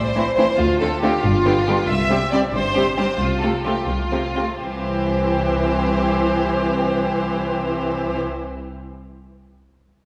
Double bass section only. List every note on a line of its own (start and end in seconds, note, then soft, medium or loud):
0.00 0.45 A1 soft
0.59 1.10 D2 medium
1.24 1.75 G1 soft
1.89 2.40 C2 soft
2.53 3.05 G1 soft
3.20 3.74 C2 soft
3.88 4.45 C2 soft
4.61 8.22 C2 soft